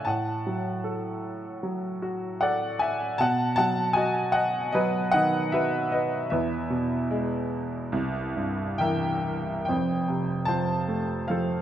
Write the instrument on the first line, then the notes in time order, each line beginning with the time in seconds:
upright piano
0.05 A2 F#5 A5
0.47 F#3
0.84 A4
1.63 F#3
2.02 F#4
2.41 A4 D5 F#5
2.79 E5 G#5
3.18 B2 F#5 A5
3.56 F#3 F#5 A5
3.93 F#4 D#5 G#5
4.32 D#5 F#5
4.72 F#3 B4 D#5
5.11 D#3 D#5 F#5
5.52 F#4 B4 E5
5.92 B4 D#5
6.30 E2 B4 E5
6.70 B2
7.11 G#3
7.92 C2
8.36 G2
8.78 E3 A#4 E5 G5
9.65 F1 F2 C5 G5
10.09 C3
10.45 F3 C5 A5
10.89 A3
11.28 F3 A4 C5 F5